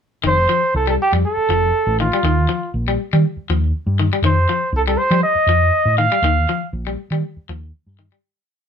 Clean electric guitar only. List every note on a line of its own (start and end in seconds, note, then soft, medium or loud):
0.24 0.37 D#3 medium
0.49 0.62 F3 medium
0.87 1.01 G3 medium
1.13 1.26 G3 medium
1.50 1.63 F3 medium
2.00 2.07 D#3 medium
2.13 2.19 G3 medium
2.25 2.38 D#3 medium
2.49 2.62 F3 medium
2.88 3.01 G3 medium
3.13 3.26 G3 medium
3.50 3.63 F3 medium
3.99 4.06 D#3 medium
4.13 4.19 G3 medium
4.24 4.37 D#3 loud
4.49 4.62 F3 medium
4.88 5.01 G3 medium
5.11 5.25 G3 medium
5.49 5.62 F3 medium
5.98 6.05 D#3 medium
6.12 6.18 G3 medium
6.24 6.37 D#3 medium
6.49 6.62 F3 medium
6.87 7.00 G3 medium
7.12 7.25 G3 medium
7.49 7.62 F3 medium
7.99 8.06 D#3 medium
8.12 8.18 G3 medium